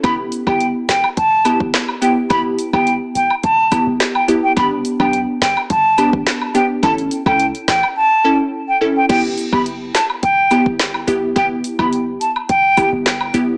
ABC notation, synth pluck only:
X:1
M:4/4
L:1/16
Q:1/4=106
K:Edor
V:1 name="Synth pluck"
[B,EG] z2 [B,EG] z6 [B,EG] z3 [B,EG] z | [B,EG] z2 [B,EG] z6 [B,EG] z3 [B,EG] z | [B,DG] z2 [B,DG] z6 [B,DG] z3 [B,DG] z | [CEA] z2 [CEA] z6 [CEA] z3 [CEA] z |
[B,EG] z2 [B,EG] z6 [B,EG] z3 [B,EG] z | [B,EG] z2 [B,EG] z6 [B,EG] z3 [B,EG] z |]